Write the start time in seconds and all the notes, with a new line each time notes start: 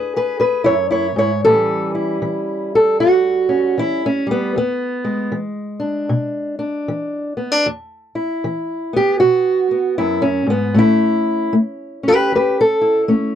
Already playing: E2 D4 G#4 B4
0.16 G#4 B4
0.40 G#4 B4
0.64 F#2 E4 C#5
0.90 E4 C#5
1.16 G#2 E4 C#5
1.45 A2 E3 G3 C#4 A4
1.95 E4
2.22 E3
2.75 A4
3.00 E2 F#4
3.49 C#4
3.78 E3 E4
4.06 C#4
4.27 G3
4.31 B3
4.56 E2 B3
5.04 G#3
5.32 E3
5.80 D4
6.09 B2
6.59 D4
6.88 E3
7.37 B3
7.52 D4
7.66 E2
8.15 E4
8.44 E3
8.93 B3 G4
9.20 B2 F#4
9.71 B3
9.98 F#2 E4
10.22 C#4
10.46 G#2 B3
10.74 A2 A3 C#4
10.79 E4
11.53 A3
12.03 C#4
12.08 G4 B4
12.32 E2 G4 B4
12.61 A4
12.81 E4
13.08 A3 C#4